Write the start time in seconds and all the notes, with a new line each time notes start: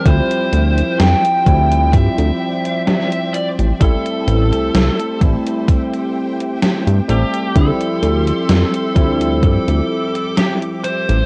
Already playing: C5
0.04 D2 F3 G3 C4 E4 C5 E5 G5, kick, closed hi-hat
0.31 closed hi-hat
0.53 D2, closed hi-hat
0.78 closed hi-hat
1.00 F2 G5, snare, closed hi-hat
1.25 closed hi-hat
1.45 D2 F3 G3 C4 E4, kick, closed hi-hat
1.72 closed hi-hat
1.93 G2 D5 E5, kick, closed hi-hat
2.18 D2, closed hi-hat
2.65 closed hi-hat
2.87 snare, closed hi-hat
3.12 closed hi-hat
3.34 D5, closed hi-hat
3.59 A1, closed hi-hat
3.79 A1 G3 A3 C4 E4 G4 A4 C5 E5 A5, kick, closed hi-hat
4.06 closed hi-hat
4.27 A1, closed hi-hat
4.52 C2, closed hi-hat
4.74 C2, snare, closed hi-hat
5.00 closed hi-hat
5.20 A1 G3 A3 C4 E4, kick, closed hi-hat
5.47 closed hi-hat
5.68 G5, kick, closed hi-hat
5.93 closed hi-hat
6.40 closed hi-hat
6.62 snare, closed hi-hat
6.87 G2, closed hi-hat
7.08 A1 G3 A3 C4 G4 A4, closed hi-hat
7.34 closed hi-hat
7.54 D2 F3 G3 C4 E4 A4 C6, kick, closed hi-hat
7.81 closed hi-hat
8.03 D2, closed hi-hat
8.27 closed hi-hat
8.49 F2, snare, closed hi-hat
8.74 closed hi-hat
8.95 D2 F3 G3 C4 E4, kick, closed hi-hat
9.21 closed hi-hat
9.43 G2 A4 D6, kick, closed hi-hat
9.68 D2, closed hi-hat
10.15 closed hi-hat
10.37 G4, snare, closed hi-hat
10.62 closed hi-hat
10.84 C5, closed hi-hat
11.09 A1, closed hi-hat